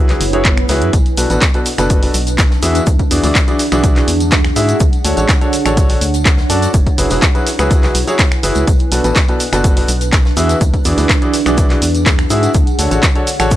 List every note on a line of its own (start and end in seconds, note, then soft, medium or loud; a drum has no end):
0.00 0.16 C#2 medium
0.00 1.61 E4 medium
0.00 3.50 B4 medium
0.00 swell medium
0.09 0.20 F#3 medium
0.09 0.20 E4 medium
0.09 0.20 F#4 medium
0.09 0.20 G#4 medium
0.09 0.20 B4 medium
0.09 snare medium
0.09 clap soft
0.09 closed hi-hat soft
0.21 0.64 F#1 loud
0.21 open hi-hat loud
0.21 shaker medium
0.33 0.44 F#3 medium
0.33 0.44 E4 medium
0.33 0.44 F#4 medium
0.33 0.44 G#4 medium
0.33 0.44 C#5 loud
0.33 closed hi-hat medium
0.45 kick loud
0.45 clap loud
0.45 closed hi-hat medium
0.57 finger snap medium
0.57 closed hi-hat soft
0.69 0.83 C#2 loud
0.69 0.88 E4 medium
0.69 0.88 F#4 medium
0.69 0.88 G#4 medium
0.69 0.88 B4 loud
0.69 snare loud
0.69 open hi-hat loud
0.69 shaker medium
0.82 0.90 F#2 loud
0.82 closed hi-hat medium
0.93 1.02 B1 loud
0.93 6.74 D4 loud
0.93 kick loud
0.93 closed hi-hat medium
0.93 tambourine medium
0.93 shaker medium
0.93 shaker soft
1.06 closed hi-hat soft
1.06 tambourine soft
1.17 1.27 B1 medium
1.17 1.28 B2 medium
1.17 1.28 D4 medium
1.17 1.28 F#4 medium
1.17 1.28 A4 medium
1.17 1.28 B4 medium
1.17 open hi-hat loud
1.17 shaker medium
1.30 1.39 A1 medium
1.30 1.41 B2 medium
1.30 1.41 D4 medium
1.30 1.41 F#4 medium
1.30 1.41 A4 medium
1.30 1.41 B4 medium
1.30 closed hi-hat medium
1.30 tambourine medium
1.30 shaker soft
1.42 kick loud
1.42 snare loud
1.42 clap loud
1.42 closed hi-hat medium
1.42 tambourine medium
1.42 shaker soft
1.42 shaker medium
1.54 1.65 B2 medium
1.54 1.65 D4 medium
1.54 1.65 F#4 medium
1.54 1.65 A4 medium
1.54 1.65 B4 medium
1.54 closed hi-hat soft
1.54 tambourine soft
1.66 open hi-hat loud
1.66 shaker medium
1.78 2.09 F#1 medium
1.78 2.00 B2 loud
1.78 2.00 D4 medium
1.78 2.00 F#4 medium
1.78 2.00 A4 medium
1.78 2.00 B4 loud
1.78 finger snap medium
1.78 closed hi-hat soft
1.78 closed hi-hat medium
1.78 tambourine medium
1.78 shaker soft
1.89 kick loud
1.89 closed hi-hat medium
1.89 tambourine medium
1.89 shaker soft
1.89 shaker medium
2.03 2.14 B2 medium
2.03 2.14 D4 medium
2.03 2.14 F#4 medium
2.03 2.14 A4 medium
2.03 2.14 B4 medium
2.03 open hi-hat medium
2.03 tambourine soft
2.14 2.58 B1 medium
2.14 open hi-hat loud
2.14 shaker medium
2.27 closed hi-hat medium
2.27 closed hi-hat soft
2.27 tambourine medium
2.27 shaker soft
2.38 kick loud
2.38 snare loud
2.38 clap loud
2.38 closed hi-hat medium
2.38 tambourine medium
2.38 shaker medium
2.38 shaker soft
2.50 snare medium
2.50 tambourine soft
2.62 2.81 E2 medium
2.62 2.81 E3 loud
2.62 2.81 E4 medium
2.62 2.81 F#4 medium
2.62 2.81 G#4 medium
2.62 2.81 E5 loud
2.62 open hi-hat loud
2.62 shaker medium
2.75 closed hi-hat soft
2.75 closed hi-hat medium
2.75 tambourine medium
2.75 shaker soft
2.86 2.96 E2 loud
2.86 kick loud
2.86 closed hi-hat medium
2.86 tambourine medium
2.86 shaker medium
2.86 shaker soft
2.99 kick medium
2.99 closed hi-hat soft
2.99 tambourine soft
3.11 3.20 E2 medium
3.11 3.22 E3 medium
3.11 3.22 E4 medium
3.11 3.22 F#4 medium
3.11 3.22 G#4 medium
3.11 3.22 D5 medium
3.11 open hi-hat loud
3.11 shaker medium
3.18 7.52 F#5 medium
3.24 3.32 D2 medium
3.24 3.34 E3 medium
3.24 3.35 E4 medium
3.24 3.34 F#4 medium
3.24 3.35 G#4 medium
3.24 3.34 D5 medium
3.24 open hi-hat medium
3.24 tambourine medium
3.24 shaker soft
3.35 kick loud
3.35 snare loud
3.35 clap loud
3.35 closed hi-hat medium
3.35 tambourine medium
3.35 shaker medium
3.35 shaker soft
3.44 3.59 E3 medium
3.44 3.59 E4 medium
3.44 3.59 F#4 medium
3.44 5.55 G#4 loud
3.44 3.59 G#4 medium
3.44 3.59 D5 medium
3.44 closed hi-hat soft
3.44 tambourine soft
3.59 snare soft
3.59 open hi-hat loud
3.59 shaker medium
3.72 4.03 B1 medium
3.72 3.93 E3 loud
3.72 3.93 E4 medium
3.72 3.93 F#4 medium
3.72 3.93 G#4 medium
3.72 3.93 D5 loud
3.72 finger snap medium
3.72 closed hi-hat medium
3.72 tambourine medium
3.72 shaker soft
3.83 kick loud
3.83 closed hi-hat medium
3.83 tambourine medium
3.83 shaker medium
3.83 shaker soft
3.96 4.07 E3 medium
3.96 4.07 E4 medium
3.96 4.07 F#4 medium
3.96 4.07 G#4 medium
3.96 4.07 D5 medium
3.96 snare medium
3.96 clap soft
3.96 closed hi-hat soft
3.96 tambourine soft
4.08 4.51 E2 medium
4.08 open hi-hat loud
4.08 shaker medium
4.20 closed hi-hat medium
4.20 tambourine medium
4.20 shaker soft
4.31 kick loud
4.31 snare loud
4.31 clap loud
4.31 closed hi-hat medium
4.31 tambourine medium
4.31 shaker medium
4.31 shaker soft
4.44 finger snap medium
4.44 snare soft
4.44 closed hi-hat soft
4.44 tambourine soft
4.56 4.74 G#2 loud
4.56 4.75 E4 loud
4.56 4.75 F#4 medium
4.56 4.75 G#4 medium
4.56 4.75 E5 loud
4.56 open hi-hat loud
4.56 shaker medium
4.68 closed hi-hat medium
4.68 tambourine medium
4.68 shaker soft
4.80 4.90 D2 loud
4.80 kick loud
4.80 closed hi-hat medium
4.80 tambourine medium
4.80 shaker medium
4.80 shaker soft
4.93 closed hi-hat soft
4.93 tambourine soft
5.04 5.14 D2 medium
5.04 5.15 D3 medium
5.04 5.15 D4 medium
5.04 5.15 F#4 medium
5.04 5.15 A4 medium
5.04 5.15 C#5 medium
5.04 open hi-hat loud
5.04 shaker medium
5.17 5.26 A1 medium
5.17 5.28 D3 medium
5.17 5.28 D4 medium
5.17 5.28 F#4 medium
5.17 5.28 A4 medium
5.17 5.28 C#5 medium
5.17 closed hi-hat soft
5.17 tambourine medium
5.17 shaker soft
5.29 kick loud
5.29 snare loud
5.29 clap loud
5.29 closed hi-hat medium
5.29 tambourine medium
5.29 shaker medium
5.29 shaker soft
5.41 5.52 D3 medium
5.41 5.52 D4 medium
5.41 5.52 F#4 medium
5.41 5.52 A4 medium
5.41 5.52 C#5 medium
5.41 7.52 C#5 medium
5.41 closed hi-hat soft
5.41 tambourine soft
5.53 open hi-hat loud
5.53 shaker medium
5.66 5.96 A1 medium
5.66 5.87 D3 medium
5.66 5.87 D4 medium
5.66 5.87 F#4 medium
5.66 5.87 A4 medium
5.66 5.87 C#5 loud
5.66 finger snap medium
5.66 closed hi-hat medium
5.66 closed hi-hat soft
5.66 tambourine medium
5.66 shaker soft
5.77 kick loud
5.77 closed hi-hat medium
5.77 tambourine medium
5.77 shaker medium
5.77 shaker soft
5.89 6.01 D3 medium
5.89 6.01 D4 medium
5.89 6.01 F#4 medium
5.89 6.01 A4 medium
5.89 6.01 C#5 medium
5.89 open hi-hat medium
5.89 tambourine soft
6.01 6.45 D2 medium
6.01 open hi-hat loud
6.01 shaker medium
6.14 closed hi-hat soft
6.14 tambourine medium
6.14 shaker soft
6.25 kick loud
6.25 snare loud
6.25 clap loud
6.25 closed hi-hat medium
6.25 tambourine medium
6.25 shaker medium
6.25 shaker soft
6.37 snare medium
6.37 tambourine soft
6.50 6.68 F#2 medium
6.50 6.68 D4 loud
6.50 6.68 F#4 medium
6.50 6.68 A4 medium
6.50 6.68 D5 loud
6.50 open hi-hat loud
6.50 shaker medium
6.62 closed hi-hat soft
6.62 tambourine medium
6.62 shaker soft
6.74 6.83 F#1 loud
6.74 9.35 E4 medium
6.74 kick loud
6.74 closed hi-hat medium
6.74 tambourine medium
6.74 shaker medium
6.74 shaker soft
6.86 kick medium
6.86 closed hi-hat soft
6.86 tambourine soft
6.98 7.07 F#1 medium
6.98 7.09 F#3 medium
6.98 7.09 E4 medium
6.98 7.09 F#4 medium
6.98 7.09 G#4 medium
6.98 7.09 B4 medium
6.98 open hi-hat loud
6.98 shaker medium
7.10 7.19 E1 medium
7.10 7.22 F#3 medium
7.10 7.22 E4 medium
7.10 7.22 F#4 medium
7.10 7.22 G#4 medium
7.10 7.22 B4 medium
7.10 open hi-hat medium
7.10 tambourine medium
7.10 shaker soft
7.22 kick loud
7.22 snare loud
7.22 clap loud
7.22 closed hi-hat medium
7.22 tambourine medium
7.22 shaker medium
7.22 shaker soft
7.35 7.46 F#3 medium
7.35 7.46 E4 medium
7.35 7.46 F#4 medium
7.35 7.46 G#4 medium
7.35 7.46 B4 medium
7.35 closed hi-hat soft
7.35 tambourine soft
7.46 snare soft
7.46 open hi-hat loud
7.46 shaker medium
7.59 7.90 C#2 medium
7.59 7.80 F#3 medium
7.59 7.80 E4 medium
7.59 7.80 F#4 medium
7.59 7.80 G#4 medium
7.59 7.80 B4 loud
7.59 11.24 B4 medium
7.59 finger snap medium
7.59 closed hi-hat medium
7.59 tambourine medium
7.59 shaker soft
7.71 kick loud
7.71 closed hi-hat medium
7.71 tambourine medium
7.71 shaker medium
7.71 shaker soft
7.83 7.94 F#3 medium
7.83 7.94 E4 medium
7.83 7.94 F#4 medium
7.83 7.94 G#4 medium
7.83 7.94 B4 medium
7.83 snare medium
7.83 clap soft
7.83 closed hi-hat soft
7.83 tambourine soft
7.95 8.04 B1 medium
7.95 open hi-hat loud
7.95 shaker medium
8.07 8.18 F#3 medium
8.07 8.18 E4 medium
8.07 8.18 F#4 medium
8.07 8.18 G#4 medium
8.07 8.18 C#5 loud
8.07 closed hi-hat soft
8.07 tambourine medium
8.07 shaker soft
8.19 kick loud
8.19 snare loud
8.19 clap loud
8.19 closed hi-hat medium
8.19 tambourine medium
8.19 shaker medium
8.19 shaker soft
8.31 finger snap medium
8.31 snare soft
8.31 closed hi-hat soft
8.31 tambourine soft
8.43 8.52 F#1 medium
8.43 8.62 E4 loud
8.43 8.62 F#4 medium
8.43 8.62 G#4 medium
8.43 8.62 B4 loud
8.43 open hi-hat loud
8.43 shaker medium
8.55 8.64 C#2 medium
8.55 closed hi-hat medium
8.55 tambourine medium
8.55 shaker soft
8.67 8.77 B1 loud
8.67 13.56 D4 medium
8.67 kick loud
8.67 closed hi-hat medium
8.67 tambourine medium
8.67 shaker medium
8.67 shaker soft
8.79 closed hi-hat soft
8.79 tambourine soft
8.92 9.01 B1 loud
8.92 9.02 B2 medium
8.92 9.02 D4 medium
8.92 9.02 F#4 medium
8.92 9.02 A4 medium
8.92 9.02 B4 medium
8.92 open hi-hat loud
8.92 shaker medium
9.04 9.13 A1 medium
9.04 9.15 B2 medium
9.04 9.15 D4 medium
9.04 9.15 F#4 medium
9.04 9.15 A4 medium
9.04 9.15 B4 medium
9.04 closed hi-hat medium
9.04 tambourine medium
9.04 shaker soft
9.16 kick loud
9.16 snare loud
9.16 clap loud
9.16 closed hi-hat medium
9.16 tambourine medium
9.16 shaker medium
9.16 shaker soft
9.28 9.39 B2 medium
9.28 9.39 D4 medium
9.28 9.39 F#4 medium
9.28 9.39 A4 medium
9.28 9.39 B4 medium
9.28 closed hi-hat soft
9.28 tambourine soft
9.40 open hi-hat loud
9.40 shaker medium
9.53 9.83 F#1 medium
9.53 9.74 B2 loud
9.53 9.74 D4 medium
9.53 9.74 F#4 medium
9.53 9.74 A4 medium
9.53 9.74 B4 loud
9.53 finger snap medium
9.53 closed hi-hat soft
9.53 tambourine medium
9.53 shaker soft
9.64 kick loud
9.64 closed hi-hat medium
9.64 tambourine medium
9.64 shaker loud
9.64 shaker soft
9.77 9.88 B2 medium
9.77 9.88 D4 medium
9.77 9.88 F#4 medium
9.77 9.88 A4 medium
9.77 9.88 B4 medium
9.77 open hi-hat medium
9.77 tambourine soft
9.88 10.32 B1 medium
9.88 open hi-hat loud
9.88 shaker medium
10.01 closed hi-hat soft
10.01 tambourine medium
10.01 shaker soft
10.13 kick loud
10.13 snare loud
10.13 clap loud
10.13 closed hi-hat medium
10.13 tambourine medium
10.13 shaker medium
10.13 shaker soft
10.25 snare medium
10.25 tambourine soft
10.37 10.55 E2 medium
10.37 10.55 E3 loud
10.37 10.55 E4 medium
10.37 10.55 F#4 medium
10.37 10.55 G#4 medium
10.37 10.55 E5 loud
10.37 open hi-hat loud
10.37 shaker medium
10.49 closed hi-hat medium
10.49 closed hi-hat soft
10.49 tambourine medium
10.49 shaker soft
10.61 10.70 E2 loud
10.61 kick loud
10.61 closed hi-hat medium
10.61 tambourine medium
10.61 shaker medium
10.61 shaker soft
10.74 kick medium
10.74 closed hi-hat soft
10.74 tambourine soft
10.84 10.94 E2 loud
10.84 10.96 E3 medium
10.84 10.96 E4 medium
10.84 10.96 F#4 medium
10.84 10.96 G#4 medium
10.84 10.96 D5 medium
10.84 open hi-hat loud
10.84 shaker medium
10.98 11.06 D2 loud
10.98 11.09 E3 medium
10.98 11.09 E4 medium
10.98 11.09 F#4 medium
10.98 11.09 G#4 medium
10.98 11.09 D5 medium
10.98 open hi-hat medium
10.98 tambourine medium
10.98 shaker soft
11.09 kick loud
11.09 snare loud
11.09 clap loud
11.09 closed hi-hat medium
11.09 tambourine medium
11.09 shaker soft
11.09 shaker medium
11.15 13.32 G#4 medium
11.22 11.33 E3 medium
11.22 11.33 E4 medium
11.22 11.33 F#4 medium
11.22 11.33 G#4 medium
11.22 11.33 D5 medium
11.22 closed hi-hat soft
11.22 tambourine soft
11.33 13.56 F#5 medium
11.33 snare soft
11.33 open hi-hat loud
11.33 shaker medium
11.46 11.77 B1 medium
11.46 11.67 E3 loud
11.46 11.67 E4 medium
11.46 11.67 F#4 medium
11.46 11.67 G#4 medium
11.46 11.67 D5 loud
11.46 finger snap medium
11.46 closed hi-hat medium
11.46 tambourine medium
11.46 shaker soft
11.57 kick loud
11.57 closed hi-hat medium
11.57 tambourine medium
11.57 shaker loud
11.57 shaker soft
11.70 11.81 E3 medium
11.70 11.81 E4 medium
11.70 11.81 F#4 medium
11.70 11.81 G#4 medium
11.70 11.81 D5 medium
11.70 snare medium
11.70 clap soft
11.70 closed hi-hat soft
11.70 tambourine soft
11.82 12.25 E2 medium
11.82 open hi-hat loud
11.82 shaker medium
11.95 closed hi-hat medium
11.95 tambourine medium
11.95 shaker soft
12.06 kick loud
12.06 snare loud
12.06 clap loud
12.06 closed hi-hat medium
12.06 tambourine medium
12.06 shaker medium
12.06 shaker soft
12.18 finger snap medium
12.18 snare soft
12.18 closed hi-hat soft
12.18 tambourine soft
12.30 12.48 G#2 medium
12.30 12.49 E4 loud
12.30 12.49 F#4 loud
12.30 12.49 G#4 medium
12.30 12.49 E5 loud
12.30 open hi-hat loud
12.30 shaker medium
12.43 closed hi-hat medium
12.43 tambourine medium
12.43 shaker soft
12.54 12.64 D2 loud
12.54 kick loud
12.54 closed hi-hat medium
12.54 tambourine medium
12.54 shaker medium
12.54 shaker soft
12.67 13.56 C#5 loud
12.67 closed hi-hat soft
12.67 tambourine soft
12.79 12.88 D2 medium
12.79 12.89 D3 medium
12.79 12.89 D4 medium
12.79 12.89 F#4 medium
12.79 12.89 A4 medium
12.79 12.89 C#5 medium
12.79 open hi-hat loud
12.79 shaker medium
12.91 13.00 A1 loud
12.91 13.02 D3 medium
12.91 13.02 D4 medium
12.91 13.02 F#4 medium
12.91 13.02 A4 medium
12.91 13.02 C#5 medium
12.91 closed hi-hat medium
12.91 tambourine medium
12.91 shaker soft
13.03 kick loud
13.03 snare loud
13.03 clap loud
13.03 closed hi-hat medium
13.03 tambourine medium
13.03 shaker medium
13.03 shaker soft
13.15 13.26 D3 medium
13.15 13.26 D4 medium
13.15 13.26 F#4 medium
13.15 13.26 A4 medium
13.15 13.26 C#5 medium
13.15 closed hi-hat soft
13.15 tambourine soft
13.27 open hi-hat medium
13.27 shaker medium
13.39 13.56 A1 medium
13.39 13.56 D3 loud
13.39 13.56 D4 medium
13.39 13.56 F#4 medium
13.39 13.56 A4 medium
13.39 13.56 C#5 loud
13.39 finger snap medium
13.39 closed hi-hat soft
13.39 closed hi-hat medium
13.39 tambourine medium
13.39 shaker soft
13.51 kick loud
13.51 closed hi-hat medium
13.51 tambourine medium
13.51 shaker medium
13.51 shaker soft